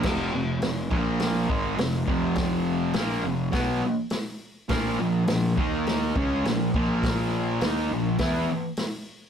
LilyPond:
<<
  \new Staff \with { instrumentName = "Distorted electric guitar" } { \clef bass \time 4/4 \key f \minor \tempo 4 = 103 <f, c f>8 <f, c>8 <f, c>8 <bes, f bes>4 <aes, ees aes>8 <f, c>8 <f, c f>8~ | <f, c f>4 <bes, f bes>8 <f, c>8 <b, ges b>8 r4. | <bes, f bes>8 <bes, f>8 <bes, f>8 <ees bes ees'>4 <des aes des'>8 <bes, f>8 <bes, f bes>8~ | <bes, f bes>4 <ees bes ees'>8 <bes, f>8 <e b e'>8 r4. | }
  \new Staff \with { instrumentName = "Picked electric bass" } { \clef bass \time 4/4 \key f \minor f,,8 f,,8 f,,8 bes,,4 aes,,8 f,,8 f,,8~ | f,,4 bes,,8 f,,8 b,,8 r4. | bes,,8 bes,,8 bes,,8 ees,4 des,8 bes,,8 bes,,8~ | bes,,4 ees,8 bes,,8 e,8 r4. | }
  \new DrumStaff \with { instrumentName = "Drums" } \drummode { \time 4/4 <cymc bd sn>4 <hho sn>8 bd8 <hho sn>8 bd8 <hho sn>8 bd8 | <hho bd sn>4 <hho sn>4 <hho bd sn>4 <hho sn>4 | <hho bd sn>4 <hho sn>8 bd8 <hho sn>8 bd8 <hho sn>8 bd8 | <hho bd sn>4 <hho sn>4 <hho bd sn>4 <hho sn>4 | }
>>